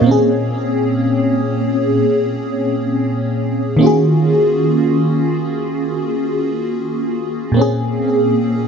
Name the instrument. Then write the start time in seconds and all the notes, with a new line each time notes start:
fm electric piano
Already playing: G#4 C#5
0.01 A#2 A#3
0.06 C4 C#4
0.11 G#4
3.77 D#3 A#3
3.81 C#4 F4 F#4
3.86 G#4
7.52 A#2 A#3
7.57 C4 C#4
7.61 G#4